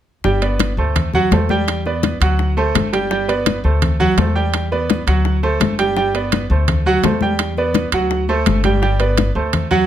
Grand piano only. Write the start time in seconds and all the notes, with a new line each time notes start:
0.24 G3 G4 G5
0.42 B3 B4 D5
0.78 A3 A4 C5
1.14 F#3 F#4 F#5
1.32 A3 A4 C5
1.50 G3 G4 G5
1.86 B3 B4 D5
2.22 F#3 F#4 F#5
2.57 A3 A4 C5
2.93 G3 G4 G5
3.11 G3 G4 G5
3.28 B3 B4 D5
3.64 A3 A4 C5
4.00 F#3 F#4 F#5
4.18 A3 A4 C5
4.35 G3 G4 G5
4.72 B3 B4 D5
5.07 F#3 F#4 F#5
5.43 A3 A4 C5
5.79 G3 G4 G5
5.96 G3 G4 G5
6.14 B3 B4 D5
6.51 A3 A4 C5
6.86 F#3 F#4 F#5
7.04 A3 A4 C5
7.22 G3 G4 G5
7.58 B3 B4 D5
7.93 F#3 F#4 F#5
8.29 A3 A4 C5
8.64 G3 G4 G5
8.82 G3 G4 G5
9.00 B3 B4 D5
9.35 A3 A4 C5
9.71 F#3 F#4 F#5